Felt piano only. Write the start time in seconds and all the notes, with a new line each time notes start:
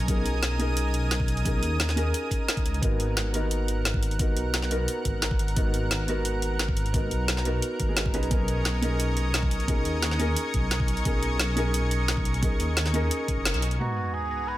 Already playing: C#4 D#4 G#4 A#4
0.07 C#4 D#4 G#4 A#4
0.59 C#4 D#4 G#4 A#4
1.45 C#4 D#4 G#4 A#4
1.96 C#4 D#4 G#4 A#4
2.81 B3 D#4 F#4 A#4
3.33 B3 D#4 F#4 A#4
4.19 B3 D#4 F#4 A#4
4.70 B3 D#4 F#4 A#4
5.56 B3 D#4 F#4 A#4
6.07 B3 D#4 F#4 A#4
6.93 B3 D#4 F#4 A#4
7.45 B3 D#4 F#4 A#4
7.88 B3 D#4 F#4 G#4
8.14 C#4 D#4 G#4 B4
8.30 C#4 D#4 G#4 A#4
8.81 C#4 D#4 G#4 A#4
9.67 C#4 D#4 G#4 A#4
10.19 C#4 D#4 G#4 A#4
11.05 C#4 D#4 G#4 A#4
11.56 C#4 D#4 G#4 A#4
12.42 C#4 D#4 G#4 A#4
12.93 C#4 D#4 G#4 A#4
13.79 G#2 B3 D#4 F#4 A#5